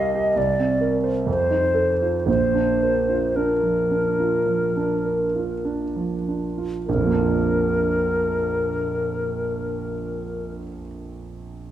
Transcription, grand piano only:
0.00 0.32 C2 medium
0.00 0.39 G3 soft
0.00 0.15 G4 soft
0.00 0.39 A#4 soft
0.00 0.39 D#5 medium
0.15 0.36 G4 soft
0.36 1.24 C2 medium
0.60 0.95 C4 soft
0.81 1.18 A#4 soft
1.04 1.27 C5 soft
1.27 2.24 F2 soft
1.51 1.90 D#4 soft
1.74 2.16 A4 soft
2.02 2.27 F4 soft
2.26 4.43 A#1 soft
2.26 4.44 A#2 soft
2.55 2.98 D4 soft
2.82 3.25 A#4 soft
3.09 3.53 F4 soft
3.37 3.81 D4 soft
3.63 4.08 F3 soft
3.91 4.36 D4 soft
4.20 4.65 F4 soft
4.46 4.93 F3 soft
4.77 5.23 D4 soft
5.05 5.52 A#4 soft
5.35 5.83 F4 soft
5.65 6.14 D4 soft
5.96 6.46 F3 soft
6.28 6.76 D4 soft
6.58 6.87 F4 soft
6.89 10.57 A#1 soft
6.94 10.62 F2 soft
7.01 10.68 F3 soft
7.07 10.74 A#3 soft
7.12 10.79 D4 soft
7.18 10.86 F4 soft

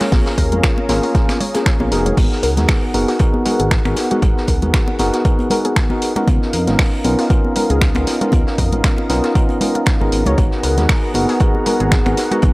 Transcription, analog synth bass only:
0.12 0.24 A#1 loud
0.38 0.54 D#2 loud
0.52 0.61 F2 medium
0.89 1.00 G#1 medium
1.80 1.89 A#1 loud
1.92 2.13 F1 loud
2.17 2.29 G#1 medium
2.43 2.59 C#2 loud
2.57 2.66 D#2 medium
2.94 3.06 F#1 medium
3.60 3.80 G#1 loud
3.85 3.95 G#1 loud
4.22 4.34 G#1 loud
4.48 4.64 C#2 loud
4.62 4.72 D#2 medium
4.99 5.11 F#1 medium
6.28 6.39 C#2 loud
6.53 6.69 F2 loud
6.67 6.77 G#1 medium
7.05 7.16 B1 medium
7.70 7.90 C#2 loud
7.96 8.05 C#2 loud
8.33 8.44 C#2 medium
8.58 8.74 F2 loud
8.73 8.82 G#1 medium
9.10 9.21 B1 medium
10.01 10.10 G#1 loud
10.12 10.24 G#1 medium
10.26 10.36 C#2 loud
10.38 10.49 G#1 loud
10.63 10.79 C#2 loud
10.78 10.87 D#2 medium
11.15 11.26 F#1 medium
11.80 12.00 G#1 loud
12.06 12.15 G#1 loud
12.43 12.53 G#1 loud

